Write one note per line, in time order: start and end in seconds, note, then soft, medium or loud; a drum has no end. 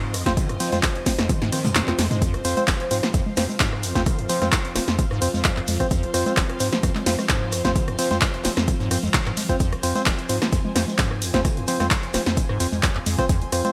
0.00 0.16 G#2 medium
0.00 13.72 F3 medium
0.00 13.72 C4 medium
0.00 13.72 C5 medium
0.00 2.20 D#5 medium
0.14 0.24 F2 medium
0.14 cross-stick medium
0.14 open hi-hat loud
0.14 ride medium
0.14 shaker medium
0.14 shekere medium
0.26 0.39 F2 medium
0.26 0.32 C4 loud
0.26 0.32 F4 medium
0.26 0.32 C5 loud
0.26 kick medium
0.26 snare medium
0.26 closed hi-hat medium
0.26 shekere soft
0.37 0.51 D#3 loud
0.37 kick loud
0.37 closed hi-hat medium
0.37 ride medium
0.37 shekere soft
0.37 shaker medium
0.49 0.58 F2 medium
0.49 cross-stick medium
0.49 closed hi-hat soft
0.60 0.70 F3 medium
0.60 0.70 C4 medium
0.60 0.70 F4 medium
0.60 0.70 C5 loud
0.60 open hi-hat loud
0.60 ride medium
0.60 shekere medium
0.60 shaker medium
0.72 0.81 F2 medium
0.72 0.78 C4 medium
0.72 0.78 F4 medium
0.72 0.78 C5 medium
0.72 snare soft
0.72 closed hi-hat medium
0.72 low conga medium
0.72 shekere medium
0.83 0.87 G#2 medium
0.83 kick loud
0.83 cross-stick medium
0.83 snare loud
0.83 clap loud
0.83 closed hi-hat medium
0.83 ride medium
0.83 shaker medium
0.83 shekere soft
0.95 snare soft
0.95 closed hi-hat soft
1.06 1.13 F3 medium
1.06 1.13 C4 medium
1.06 1.13 F4 medium
1.06 1.13 C5 medium
1.06 kick medium
1.06 snare medium
1.06 open hi-hat loud
1.06 ride medium
1.06 shekere loud
1.06 shaker medium
1.19 1.31 F2 medium
1.19 cross-stick medium
1.19 snare medium
1.19 closed hi-hat soft
1.19 shekere medium
1.29 1.33 D#3 loud
1.29 kick loud
1.29 closed hi-hat medium
1.29 high tom medium
1.29 ride medium
1.29 shaker medium
1.29 shekere soft
1.42 1.51 G#2 medium
1.42 snare medium
1.42 closed hi-hat soft
1.52 1.66 D#3 medium
1.52 1.59 C4 medium
1.52 1.59 F4 medium
1.52 1.59 C5 medium
1.52 cross-stick medium
1.52 open hi-hat loud
1.52 ride medium
1.52 shekere medium
1.52 shaker medium
1.65 1.74 F2 medium
1.65 snare soft
1.65 mid tom medium
1.65 low conga medium
1.65 shaker medium
1.65 shekere soft
1.75 1.82 F2 medium
1.75 snare loud
1.75 snare medium
1.75 clap loud
1.75 closed hi-hat medium
1.75 ride medium
1.75 shaker medium
1.75 shekere soft
1.87 1.94 F2 medium
1.87 1.97 C4 medium
1.87 1.97 F4 medium
1.87 1.97 C5 medium
1.87 cross-stick medium
1.87 snare medium
1.87 clap soft
1.87 closed hi-hat soft
1.98 2.09 F2 loud
1.98 snare loud
1.98 open hi-hat loud
1.98 ride medium
1.98 low conga medium
1.98 shaker medium
1.98 shekere medium
2.11 2.20 G#3 medium
2.11 closed hi-hat medium
2.11 mid tom medium
2.11 low conga medium
2.11 shekere medium
2.22 2.35 F2 loud
2.22 9.59 F5 medium
2.22 kick loud
2.22 closed hi-hat medium
2.22 ride medium
2.22 shekere soft
2.22 shaker loud
2.34 2.38 F1 medium
2.34 cross-stick medium
2.34 closed hi-hat soft
2.44 2.55 F2 medium
2.44 2.55 C4 medium
2.44 2.55 F4 medium
2.44 2.55 C5 loud
2.44 open hi-hat loud
2.44 ride medium
2.44 shaker medium
2.44 shekere loud
2.57 2.63 C4 medium
2.57 2.63 F4 medium
2.57 2.63 C5 medium
2.57 closed hi-hat medium
2.57 low conga loud
2.57 shekere medium
2.67 2.72 F1 medium
2.67 kick loud
2.67 cross-stick medium
2.67 snare loud
2.67 clap loud
2.67 closed hi-hat medium
2.67 ride medium
2.67 shekere soft
2.67 shaker medium
2.80 closed hi-hat soft
2.91 3.01 G#2 medium
2.91 2.97 C4 medium
2.91 2.97 F4 medium
2.91 2.97 C5 medium
2.91 open hi-hat loud
2.91 ride medium
2.91 shaker medium
2.91 shekere medium
3.03 3.09 F3 loud
3.03 cross-stick medium
3.03 snare medium
3.03 closed hi-hat soft
3.03 shekere medium
3.14 3.21 F2 loud
3.14 kick loud
3.14 closed hi-hat medium
3.14 ride medium
3.14 shaker medium
3.14 shekere soft
3.26 low conga medium
3.37 3.47 F2 medium
3.37 3.43 C4 medium
3.37 3.43 F4 medium
3.37 3.43 C5 medium
3.37 cross-stick medium
3.37 snare medium
3.37 open hi-hat loud
3.37 ride medium
3.37 shaker medium
3.37 shekere loud
3.49 low conga medium
3.49 shekere medium
3.60 3.85 G#2 medium
3.60 kick loud
3.60 snare loud
3.60 clap loud
3.60 closed hi-hat medium
3.60 ride medium
3.60 shaker medium
3.60 shekere soft
3.72 cross-stick medium
3.83 3.93 F2 medium
3.83 open hi-hat loud
3.83 ride medium
3.83 shekere medium
3.83 shaker medium
3.95 4.08 F2 medium
3.95 4.01 C4 loud
3.95 4.01 F4 medium
3.95 4.01 C5 loud
3.95 kick medium
3.95 snare medium
3.95 closed hi-hat medium
3.95 shekere medium
4.06 4.20 D#3 loud
4.06 kick loud
4.06 cross-stick medium
4.06 closed hi-hat medium
4.06 ride medium
4.06 shekere soft
4.06 shaker medium
4.19 4.28 F2 medium
4.19 closed hi-hat soft
4.29 4.40 F3 medium
4.29 4.39 C4 medium
4.29 4.39 F4 medium
4.29 4.39 C5 loud
4.29 open hi-hat loud
4.29 ride medium
4.29 shaker medium
4.29 shekere loud
4.41 4.51 F2 medium
4.41 4.47 C4 medium
4.41 4.47 F4 medium
4.41 4.47 C5 medium
4.41 cross-stick medium
4.41 snare soft
4.41 closed hi-hat medium
4.41 low conga loud
4.41 shekere medium
4.52 4.57 G#2 medium
4.52 kick loud
4.52 snare loud
4.52 clap loud
4.52 closed hi-hat medium
4.52 ride medium
4.52 shaker loud
4.52 shekere soft
4.65 snare soft
4.65 closed hi-hat soft
4.76 4.80 F1 medium
4.76 4.82 C4 medium
4.76 4.82 F4 medium
4.76 4.82 C5 medium
4.76 cross-stick medium
4.76 snare medium
4.76 open hi-hat loud
4.76 ride medium
4.76 shekere medium
4.76 shaker medium
4.88 5.00 F2 medium
4.88 snare medium
4.88 closed hi-hat soft
4.88 shekere medium
4.99 5.03 D#3 loud
4.99 kick loud
4.99 closed hi-hat medium
4.99 ride medium
4.99 shekere soft
4.99 shaker medium
5.11 5.20 G#2 loud
5.11 cross-stick medium
5.22 5.29 F2 loud
5.22 5.28 C4 medium
5.22 5.28 F4 medium
5.22 5.28 C5 medium
5.22 open hi-hat loud
5.22 ride medium
5.22 shaker medium
5.22 shekere medium
5.34 5.43 F2 medium
5.34 low conga loud
5.34 shekere medium
5.44 5.52 F2 medium
5.44 kick loud
5.44 cross-stick medium
5.44 snare loud
5.44 clap loud
5.44 closed hi-hat medium
5.44 ride medium
5.44 shaker medium
5.44 shekere soft
5.57 5.61 F2 loud
5.57 clap soft
5.67 5.78 F2 loud
5.67 open hi-hat loud
5.67 open hi-hat medium
5.67 ride medium
5.67 low conga medium
5.67 shekere medium
5.80 5.84 C3 medium
5.80 5.86 C4 loud
5.80 5.86 F4 medium
5.80 5.86 C5 loud
5.80 kick medium
5.80 cross-stick medium
5.80 closed hi-hat medium
5.80 closed hi-hat soft
5.80 shekere medium
5.91 6.05 F2 loud
5.91 kick loud
5.91 closed hi-hat medium
5.91 ride medium
5.91 shaker loud
5.91 shekere soft
6.03 6.07 F1 medium
6.03 closed hi-hat soft
6.14 6.24 F2 medium
6.14 6.24 C4 medium
6.14 6.24 F4 medium
6.14 6.24 C5 loud
6.14 cross-stick medium
6.14 open hi-hat loud
6.14 ride medium
6.14 shekere loud
6.14 shaker medium
6.26 6.32 C4 medium
6.26 6.32 F4 medium
6.26 6.32 C5 medium
6.26 closed hi-hat medium
6.26 low conga loud
6.26 shekere medium
6.37 6.41 F1 medium
6.37 kick loud
6.37 snare loud
6.37 clap loud
6.37 closed hi-hat medium
6.37 ride medium
6.37 shaker medium
6.37 shekere soft
6.50 cross-stick medium
6.50 closed hi-hat soft
6.60 6.70 G#2 medium
6.60 6.66 C4 medium
6.60 6.66 F4 medium
6.60 6.66 C5 medium
6.60 open hi-hat loud
6.60 ride medium
6.60 shaker medium
6.60 shekere loud
6.72 6.78 F3 loud
6.72 snare medium
6.72 closed hi-hat soft
6.72 shekere medium
6.83 6.90 F2 loud
6.83 kick loud
6.83 cross-stick medium
6.83 closed hi-hat medium
6.83 ride medium
6.83 shekere soft
6.83 shaker loud
6.95 snare soft
6.95 clap soft
6.95 low conga medium
7.06 7.16 F2 medium
7.06 7.13 C4 medium
7.06 7.13 F4 medium
7.06 7.13 C5 medium
7.06 snare medium
7.06 open hi-hat loud
7.06 ride medium
7.06 shaker medium
7.06 shekere loud
7.19 cross-stick medium
7.19 low conga loud
7.19 shekere medium
7.29 7.54 G#2 medium
7.29 kick loud
7.29 snare loud
7.29 clap loud
7.29 closed hi-hat medium
7.29 ride medium
7.29 shaker medium
7.52 7.63 F2 medium
7.52 cross-stick medium
7.52 open hi-hat loud
7.52 ride medium
7.52 shekere medium
7.52 shaker medium
7.65 7.77 F2 medium
7.65 7.70 C4 loud
7.65 7.70 F4 medium
7.65 7.70 C5 loud
7.65 kick medium
7.65 snare medium
7.65 closed hi-hat medium
7.65 shekere medium
7.75 7.89 D#3 loud
7.75 kick loud
7.75 closed hi-hat medium
7.75 ride medium
7.75 shekere soft
7.75 shaker medium
7.88 7.97 F2 medium
7.88 cross-stick medium
7.88 closed hi-hat soft
7.99 8.09 F3 medium
7.99 8.09 C4 medium
7.99 8.09 F4 medium
7.99 8.09 C5 loud
7.99 open hi-hat loud
7.99 ride medium
7.99 shaker medium
7.99 shekere loud
8.11 8.20 F2 medium
8.11 8.16 C4 medium
8.11 8.16 F4 medium
8.11 8.16 C5 medium
8.11 snare soft
8.11 closed hi-hat soft
8.11 low conga loud
8.11 shekere medium
8.21 8.26 G#2 medium
8.21 kick loud
8.21 cross-stick medium
8.21 snare loud
8.21 clap loud
8.21 closed hi-hat medium
8.21 ride medium
8.21 shekere soft
8.21 shaker medium
8.34 snare soft
8.34 closed hi-hat soft
8.44 8.49 F1 medium
8.44 8.51 C4 medium
8.44 8.51 F4 medium
8.44 8.51 C5 medium
8.44 snare loud
8.44 snare medium
8.44 open hi-hat loud
8.44 ride medium
8.44 shekere loud
8.44 shaker medium
8.57 8.69 F2 medium
8.57 cross-stick medium
8.57 snare medium
8.57 closed hi-hat soft
8.57 shekere medium
8.67 8.72 D#3 loud
8.67 kick loud
8.67 closed hi-hat medium
8.67 ride medium
8.67 shekere soft
8.67 shaker medium
8.79 8.89 G#2 loud
8.79 snare soft
8.91 8.98 F#2 loud
8.91 8.97 C4 medium
8.91 8.97 F4 medium
8.91 8.97 C5 medium
8.91 cross-stick medium
8.91 open hi-hat loud
8.91 ride medium
8.91 shekere loud
8.91 shaker medium
9.03 9.09 F2 medium
9.03 low conga loud
9.03 shekere medium
9.14 9.18 C3 loud
9.14 kick loud
9.14 snare loud
9.14 clap loud
9.14 closed hi-hat medium
9.14 ride medium
9.14 shaker medium
9.26 9.32 G#2 loud
9.26 cross-stick medium
9.26 clap soft
9.37 9.44 F3 medium
9.37 open hi-hat medium
9.37 open hi-hat loud
9.37 ride medium
9.37 low conga medium
9.37 shekere loud
9.49 9.55 F2 medium
9.49 9.55 C4 loud
9.49 9.55 F4 medium
9.49 9.55 C5 loud
9.49 kick medium
9.49 closed hi-hat medium
9.49 closed hi-hat soft
9.49 shekere medium
9.60 9.74 F2 loud
9.60 13.72 G#5 medium
9.60 kick loud
9.60 closed hi-hat medium
9.60 ride medium
9.60 shaker medium
9.60 shekere soft
9.73 9.76 F1 medium
9.73 cross-stick medium
9.73 closed hi-hat soft
9.83 9.93 F2 medium
9.83 9.93 C4 medium
9.83 9.93 F4 medium
9.83 9.93 C5 loud
9.83 open hi-hat loud
9.83 ride medium
9.83 shekere medium
9.83 shaker medium
9.95 10.01 C4 medium
9.95 10.01 F4 medium
9.95 10.01 C5 medium
9.95 closed hi-hat medium
9.95 low conga medium
9.95 shekere medium
10.06 10.10 F1 medium
10.06 kick loud
10.06 cross-stick medium
10.06 snare loud
10.06 clap loud
10.06 closed hi-hat medium
10.06 ride medium
10.06 shaker medium
10.19 closed hi-hat soft
10.29 10.40 G#2 medium
10.29 10.36 C4 medium
10.29 10.36 F4 medium
10.29 10.36 C5 medium
10.29 open hi-hat loud
10.29 ride medium
10.29 shekere medium
10.29 shaker medium
10.42 10.48 F3 loud
10.42 cross-stick medium
10.42 snare medium
10.42 closed hi-hat soft
10.42 shekere medium
10.53 10.59 F2 loud
10.53 kick loud
10.53 closed hi-hat medium
10.53 ride medium
10.53 shaker medium
10.53 shekere soft
10.65 low conga medium
10.76 10.86 F2 medium
10.76 10.82 C4 medium
10.76 10.82 F4 medium
10.76 10.82 C5 medium
10.76 cross-stick medium
10.76 snare medium
10.76 open hi-hat loud
10.76 ride medium
10.76 shekere medium
10.76 shaker medium
10.88 low conga medium
10.88 shekere medium
10.98 11.23 G#2 medium
10.98 kick loud
10.98 snare loud
10.98 clap loud
10.98 closed hi-hat medium
10.98 ride medium
10.98 shekere soft
10.98 shaker medium
11.11 cross-stick medium
11.22 11.32 F2 medium
11.22 open hi-hat loud
11.22 ride medium
11.22 shekere medium
11.22 shaker medium
11.34 11.46 F2 medium
11.34 11.39 C4 loud
11.34 11.39 F4 medium
11.34 11.39 C5 loud
11.34 kick medium
11.34 snare medium
11.34 closed hi-hat soft
11.34 shekere medium
11.45 11.59 D#3 loud
11.45 kick loud
11.45 cross-stick medium
11.45 closed hi-hat medium
11.45 ride medium
11.45 shekere soft
11.45 shaker medium
11.57 11.66 F2 medium
11.57 closed hi-hat soft
11.67 11.78 F3 medium
11.67 11.78 C4 medium
11.67 11.78 F4 medium
11.67 11.78 C5 loud
11.67 open hi-hat loud
11.67 ride medium
11.67 shaker medium
11.67 shekere medium
11.80 11.89 F2 medium
11.80 11.86 C4 medium
11.80 11.86 F4 medium
11.80 11.86 C5 medium
11.80 cross-stick medium
11.80 snare soft
11.80 closed hi-hat medium
11.80 low conga medium
11.80 shekere medium
11.91 11.95 G#2 medium
11.91 kick loud
11.91 snare loud
11.91 clap loud
11.91 closed hi-hat medium
11.91 ride medium
11.91 shaker medium
12.03 snare soft
12.03 closed hi-hat soft
12.13 12.18 F1 medium
12.13 12.20 C4 medium
12.13 12.20 F4 medium
12.13 12.20 C5 medium
12.13 cross-stick medium
12.13 snare medium
12.13 open hi-hat loud
12.13 ride medium
12.13 shaker medium
12.13 shekere loud
12.26 12.39 F2 medium
12.26 snare medium
12.26 closed hi-hat soft
12.26 shekere soft
12.37 12.41 D#3 loud
12.37 kick loud
12.37 closed hi-hat medium
12.37 ride medium
12.37 shekere soft
12.37 shaker medium
12.49 12.58 G#2 medium
12.49 cross-stick medium
12.60 12.67 F2 loud
12.60 12.66 C4 medium
12.60 12.66 F4 medium
12.60 12.66 C5 medium
12.60 open hi-hat loud
12.60 ride medium
12.60 shaker medium
12.60 shekere medium
12.72 12.81 F2 medium
12.72 low conga medium
12.72 shekere medium
12.83 12.90 F2 medium
12.83 kick loud
12.83 cross-stick medium
12.83 snare loud
12.83 clap loud
12.83 closed hi-hat medium
12.83 ride medium
12.83 shaker medium
12.83 shekere soft
12.95 12.99 F2 loud
12.95 clap soft
13.06 13.16 F2 loud
13.06 open hi-hat medium
13.06 open hi-hat loud
13.06 ride medium
13.06 low conga medium
13.06 shekere medium
13.19 13.22 C3 medium
13.19 13.24 C4 loud
13.19 13.24 F4 medium
13.19 13.24 C5 loud
13.19 kick medium
13.19 cross-stick medium
13.19 closed hi-hat medium
13.19 closed hi-hat soft
13.19 shekere medium
13.29 13.43 F2 loud
13.29 kick loud
13.29 closed hi-hat medium
13.29 ride medium
13.29 shekere soft
13.29 shaker medium
13.42 13.45 F1 medium
13.42 closed hi-hat soft
13.52 13.63 F2 medium
13.52 13.62 C4 medium
13.52 13.62 F4 medium
13.52 13.62 C5 loud
13.52 cross-stick medium
13.52 open hi-hat loud
13.52 ride medium
13.52 shaker medium
13.52 shekere medium
13.65 13.70 C4 medium
13.65 13.70 F4 medium
13.65 13.70 C5 medium
13.65 closed hi-hat medium
13.65 low conga medium
13.65 shekere medium